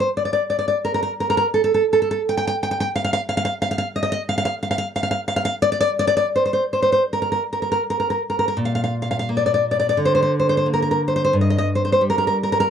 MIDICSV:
0, 0, Header, 1, 2, 480
1, 0, Start_track
1, 0, Key_signature, -2, "major"
1, 0, Tempo, 689655
1, 54, Time_signature, 2, 2, 24, 8
1, 1012, Tempo, 748130
1, 1492, Tempo, 668896
1, 3892, Tempo, 706714
1, 4372, Tempo, 776197
1, 5812, Tempo, 696864
1, 7252, Tempo, 677966
1, 8687, End_track
2, 0, Start_track
2, 0, Title_t, "Nylon-string guitar"
2, 0, Program_c, 0, 24
2, 1, Note_on_c, 0, 72, 73
2, 58, Note_off_c, 0, 72, 0
2, 118, Note_on_c, 0, 74, 62
2, 167, Note_off_c, 0, 74, 0
2, 175, Note_on_c, 0, 74, 64
2, 220, Note_off_c, 0, 74, 0
2, 229, Note_on_c, 0, 74, 68
2, 294, Note_off_c, 0, 74, 0
2, 347, Note_on_c, 0, 74, 60
2, 400, Note_off_c, 0, 74, 0
2, 408, Note_on_c, 0, 74, 66
2, 464, Note_off_c, 0, 74, 0
2, 472, Note_on_c, 0, 74, 70
2, 536, Note_off_c, 0, 74, 0
2, 589, Note_on_c, 0, 70, 73
2, 648, Note_off_c, 0, 70, 0
2, 657, Note_on_c, 0, 70, 67
2, 706, Note_off_c, 0, 70, 0
2, 714, Note_on_c, 0, 70, 69
2, 774, Note_off_c, 0, 70, 0
2, 837, Note_on_c, 0, 70, 66
2, 895, Note_off_c, 0, 70, 0
2, 904, Note_on_c, 0, 70, 79
2, 947, Note_off_c, 0, 70, 0
2, 955, Note_on_c, 0, 70, 79
2, 1013, Note_off_c, 0, 70, 0
2, 1066, Note_on_c, 0, 69, 74
2, 1123, Note_off_c, 0, 69, 0
2, 1131, Note_on_c, 0, 69, 78
2, 1189, Note_off_c, 0, 69, 0
2, 1198, Note_on_c, 0, 69, 76
2, 1254, Note_off_c, 0, 69, 0
2, 1316, Note_on_c, 0, 69, 75
2, 1366, Note_off_c, 0, 69, 0
2, 1374, Note_on_c, 0, 69, 77
2, 1424, Note_off_c, 0, 69, 0
2, 1432, Note_on_c, 0, 69, 83
2, 1492, Note_off_c, 0, 69, 0
2, 1555, Note_on_c, 0, 79, 88
2, 1607, Note_off_c, 0, 79, 0
2, 1615, Note_on_c, 0, 79, 84
2, 1679, Note_off_c, 0, 79, 0
2, 1687, Note_on_c, 0, 79, 94
2, 1745, Note_off_c, 0, 79, 0
2, 1798, Note_on_c, 0, 79, 88
2, 1849, Note_off_c, 0, 79, 0
2, 1857, Note_on_c, 0, 79, 87
2, 1915, Note_off_c, 0, 79, 0
2, 1923, Note_on_c, 0, 79, 98
2, 1980, Note_off_c, 0, 79, 0
2, 2033, Note_on_c, 0, 77, 95
2, 2088, Note_off_c, 0, 77, 0
2, 2097, Note_on_c, 0, 77, 96
2, 2149, Note_off_c, 0, 77, 0
2, 2158, Note_on_c, 0, 77, 105
2, 2214, Note_off_c, 0, 77, 0
2, 2272, Note_on_c, 0, 77, 93
2, 2322, Note_off_c, 0, 77, 0
2, 2331, Note_on_c, 0, 77, 106
2, 2378, Note_off_c, 0, 77, 0
2, 2387, Note_on_c, 0, 77, 104
2, 2448, Note_off_c, 0, 77, 0
2, 2508, Note_on_c, 0, 77, 96
2, 2565, Note_off_c, 0, 77, 0
2, 2574, Note_on_c, 0, 77, 87
2, 2617, Note_off_c, 0, 77, 0
2, 2625, Note_on_c, 0, 77, 94
2, 2690, Note_off_c, 0, 77, 0
2, 2752, Note_on_c, 0, 75, 84
2, 2793, Note_off_c, 0, 75, 0
2, 2801, Note_on_c, 0, 75, 88
2, 2859, Note_off_c, 0, 75, 0
2, 2867, Note_on_c, 0, 75, 107
2, 2933, Note_off_c, 0, 75, 0
2, 2989, Note_on_c, 0, 77, 85
2, 3044, Note_off_c, 0, 77, 0
2, 3053, Note_on_c, 0, 77, 94
2, 3098, Note_off_c, 0, 77, 0
2, 3106, Note_on_c, 0, 77, 94
2, 3172, Note_off_c, 0, 77, 0
2, 3232, Note_on_c, 0, 77, 82
2, 3281, Note_off_c, 0, 77, 0
2, 3290, Note_on_c, 0, 77, 91
2, 3334, Note_off_c, 0, 77, 0
2, 3343, Note_on_c, 0, 77, 104
2, 3406, Note_off_c, 0, 77, 0
2, 3469, Note_on_c, 0, 77, 86
2, 3512, Note_off_c, 0, 77, 0
2, 3521, Note_on_c, 0, 77, 79
2, 3569, Note_off_c, 0, 77, 0
2, 3578, Note_on_c, 0, 77, 86
2, 3643, Note_off_c, 0, 77, 0
2, 3699, Note_on_c, 0, 77, 94
2, 3751, Note_off_c, 0, 77, 0
2, 3760, Note_on_c, 0, 77, 96
2, 3814, Note_off_c, 0, 77, 0
2, 3823, Note_on_c, 0, 77, 94
2, 3888, Note_off_c, 0, 77, 0
2, 3943, Note_on_c, 0, 74, 107
2, 4001, Note_off_c, 0, 74, 0
2, 4009, Note_on_c, 0, 74, 101
2, 4059, Note_off_c, 0, 74, 0
2, 4068, Note_on_c, 0, 74, 116
2, 4128, Note_off_c, 0, 74, 0
2, 4195, Note_on_c, 0, 74, 100
2, 4242, Note_off_c, 0, 74, 0
2, 4250, Note_on_c, 0, 74, 102
2, 4305, Note_off_c, 0, 74, 0
2, 4313, Note_on_c, 0, 74, 108
2, 4373, Note_off_c, 0, 74, 0
2, 4435, Note_on_c, 0, 72, 72
2, 4488, Note_off_c, 0, 72, 0
2, 4497, Note_on_c, 0, 72, 66
2, 4536, Note_off_c, 0, 72, 0
2, 4544, Note_on_c, 0, 72, 66
2, 4601, Note_off_c, 0, 72, 0
2, 4666, Note_on_c, 0, 72, 67
2, 4717, Note_off_c, 0, 72, 0
2, 4725, Note_on_c, 0, 72, 75
2, 4779, Note_off_c, 0, 72, 0
2, 4786, Note_on_c, 0, 72, 76
2, 4846, Note_off_c, 0, 72, 0
2, 4913, Note_on_c, 0, 70, 70
2, 4961, Note_off_c, 0, 70, 0
2, 4969, Note_on_c, 0, 70, 71
2, 5023, Note_off_c, 0, 70, 0
2, 5030, Note_on_c, 0, 70, 70
2, 5093, Note_off_c, 0, 70, 0
2, 5159, Note_on_c, 0, 70, 61
2, 5210, Note_off_c, 0, 70, 0
2, 5217, Note_on_c, 0, 70, 63
2, 5269, Note_off_c, 0, 70, 0
2, 5277, Note_on_c, 0, 70, 72
2, 5337, Note_off_c, 0, 70, 0
2, 5391, Note_on_c, 0, 70, 68
2, 5443, Note_off_c, 0, 70, 0
2, 5450, Note_on_c, 0, 70, 55
2, 5507, Note_off_c, 0, 70, 0
2, 5514, Note_on_c, 0, 70, 66
2, 5578, Note_off_c, 0, 70, 0
2, 5636, Note_on_c, 0, 70, 57
2, 5686, Note_off_c, 0, 70, 0
2, 5693, Note_on_c, 0, 70, 67
2, 5741, Note_off_c, 0, 70, 0
2, 5748, Note_on_c, 0, 70, 69
2, 5804, Note_on_c, 0, 46, 61
2, 5808, Note_off_c, 0, 70, 0
2, 5861, Note_on_c, 0, 77, 71
2, 5920, Note_off_c, 0, 77, 0
2, 5928, Note_on_c, 0, 77, 72
2, 5979, Note_off_c, 0, 77, 0
2, 5988, Note_on_c, 0, 77, 70
2, 6054, Note_off_c, 0, 77, 0
2, 6114, Note_on_c, 0, 77, 69
2, 6166, Note_off_c, 0, 77, 0
2, 6174, Note_on_c, 0, 77, 71
2, 6224, Note_off_c, 0, 77, 0
2, 6233, Note_on_c, 0, 77, 78
2, 6299, Note_off_c, 0, 77, 0
2, 6299, Note_on_c, 0, 58, 49
2, 6354, Note_on_c, 0, 74, 73
2, 6408, Note_off_c, 0, 74, 0
2, 6416, Note_on_c, 0, 74, 70
2, 6464, Note_off_c, 0, 74, 0
2, 6472, Note_on_c, 0, 74, 77
2, 6537, Note_off_c, 0, 74, 0
2, 6591, Note_on_c, 0, 74, 70
2, 6639, Note_off_c, 0, 74, 0
2, 6648, Note_on_c, 0, 74, 77
2, 6705, Note_off_c, 0, 74, 0
2, 6714, Note_on_c, 0, 74, 79
2, 6746, Note_off_c, 0, 46, 0
2, 6766, Note_off_c, 0, 58, 0
2, 6769, Note_on_c, 0, 50, 61
2, 6775, Note_off_c, 0, 74, 0
2, 6826, Note_on_c, 0, 72, 73
2, 6882, Note_off_c, 0, 72, 0
2, 6890, Note_on_c, 0, 72, 76
2, 6935, Note_off_c, 0, 72, 0
2, 6944, Note_on_c, 0, 72, 75
2, 7009, Note_off_c, 0, 72, 0
2, 7061, Note_on_c, 0, 72, 63
2, 7120, Note_off_c, 0, 72, 0
2, 7128, Note_on_c, 0, 72, 75
2, 7174, Note_off_c, 0, 72, 0
2, 7182, Note_on_c, 0, 72, 73
2, 7244, Note_on_c, 0, 58, 50
2, 7247, Note_off_c, 0, 72, 0
2, 7297, Note_on_c, 0, 70, 70
2, 7351, Note_off_c, 0, 70, 0
2, 7359, Note_on_c, 0, 70, 66
2, 7412, Note_off_c, 0, 70, 0
2, 7420, Note_on_c, 0, 70, 68
2, 7486, Note_off_c, 0, 70, 0
2, 7539, Note_on_c, 0, 72, 66
2, 7587, Note_off_c, 0, 72, 0
2, 7596, Note_on_c, 0, 72, 78
2, 7649, Note_off_c, 0, 72, 0
2, 7657, Note_on_c, 0, 72, 78
2, 7698, Note_off_c, 0, 50, 0
2, 7719, Note_on_c, 0, 43, 62
2, 7724, Note_off_c, 0, 72, 0
2, 7727, Note_off_c, 0, 58, 0
2, 7775, Note_on_c, 0, 75, 66
2, 7831, Note_off_c, 0, 75, 0
2, 7840, Note_on_c, 0, 75, 72
2, 7889, Note_off_c, 0, 75, 0
2, 7898, Note_on_c, 0, 75, 75
2, 7965, Note_off_c, 0, 75, 0
2, 8017, Note_on_c, 0, 72, 64
2, 8076, Note_off_c, 0, 72, 0
2, 8084, Note_on_c, 0, 72, 69
2, 8129, Note_off_c, 0, 72, 0
2, 8138, Note_on_c, 0, 72, 74
2, 8199, Note_on_c, 0, 55, 52
2, 8205, Note_off_c, 0, 72, 0
2, 8261, Note_on_c, 0, 70, 77
2, 8311, Note_off_c, 0, 70, 0
2, 8320, Note_on_c, 0, 70, 71
2, 8375, Note_off_c, 0, 70, 0
2, 8384, Note_on_c, 0, 70, 72
2, 8449, Note_off_c, 0, 70, 0
2, 8499, Note_on_c, 0, 70, 76
2, 8553, Note_off_c, 0, 70, 0
2, 8562, Note_on_c, 0, 70, 73
2, 8608, Note_off_c, 0, 70, 0
2, 8617, Note_on_c, 0, 70, 82
2, 8658, Note_off_c, 0, 43, 0
2, 8684, Note_off_c, 0, 70, 0
2, 8686, Note_off_c, 0, 55, 0
2, 8687, End_track
0, 0, End_of_file